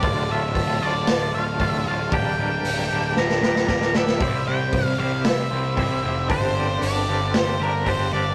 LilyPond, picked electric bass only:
\new Staff \with { instrumentName = "Picked electric bass" } { \clef bass \time 4/4 \key g \dorian \tempo 4 = 115 d,,8 d,,8 d,,8 d,,8 d,,8 d,,8 d,,8 d,,8 | d,,4 d,,8 d,,8 d,,8 d,,8 d,,8 d,,8 | c,8 c,8 c,8 c,8 c,8 c,8 c,8 f,,8 | g,,4 g,,8 g,,8 g,,8 g,,8 g,,8 g,,8 | }